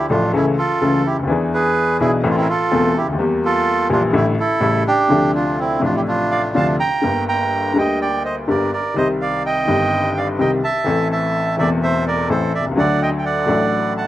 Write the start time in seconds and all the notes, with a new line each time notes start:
0.10 A1 A2 F3 A3 D4 F4 A4
0.33 C#2 C#3 E3 A3 C#4 E4 A4
0.58 F4 A4
0.81 C#2 C#3 E3 A3 C#4 A4
1.06 E4 G4
1.12 C#2
1.19 D2
1.23 D#2
1.27 E2 E3 B3 D4
1.32 G#4
1.54 G#4 B4
2.00 B1 B2 E3 B3 D4 E4 G#4
2.23 A1 A2 E3 A3 C4 E4 A4
2.30 F4
2.37 C4 E4
2.41 A#4
2.49 F4 A4
2.71 E1 E2 E3 A3 C4 A4
2.97 E4 G4
3.01 C#2
3.08 D2
3.13 D#2
3.18 E2 G3 A#3 G4
3.45 F4 A4
3.89 A#1 A#2 E3 G3 A#3 D4 F4 G4
4.13 A1 A2 D3 G3 A3 E4
4.39 E4 A4
4.60 A1 A2 C#3 G3 A3 E4
4.87 D4 G4
5.08 D2 C3 D3 F3 A3 D4
5.35 D4 F4
5.59 C4 E4
5.79 A1 A2 C3 F3 A3 D4
5.84 D4 F4
5.95 E4 G4
6.08 D4 F4
6.31 D5 F5
6.55 D2 C3 D3 F3 A3 D4 F5 A5
6.80 G5 A#5
7.02 G1 G2 D3 G3 A#3 G4
7.28 G5 A#5
7.75 D2 D3 G3 A#3 G4 D#5 G5
8.01 D5 G5
8.25 C5 D#5
8.47 G1 G2 D3 G3 A#3 G4 A#4 D5
8.73 A#4 D5
8.94 C2 C3 D#3 G3 C4 C5 D#5
8.98 G4
9.21 D5 F5
9.46 D#5 G5
9.65 G1 G2 D#3 G3 C4
9.70 G4
10.17 D5 F5
10.39 C2 C3 D#3 G3 C4 G4 D#5 G5
10.64 E5 A5
10.84 A1 A2 E3 A3 C4 A4
11.12 E5 A5
11.57 E1 E2 E3 A3 C4 A4 D5 E5
11.83 C5 E5
12.07 A#4 D5
12.29 A1 A2 E3 A3 C4 A4 C5
12.55 D5 E5
12.60 B1
12.66 C2
12.71 C#2
12.75 D2 D3 F#3 A3 D4 A4 D5 F#5
13.02 D#5 G5
13.18 G5
13.25 D5 F#5
13.46 A1 A2 F#3 A3 D4 A4
13.97 F#5 A5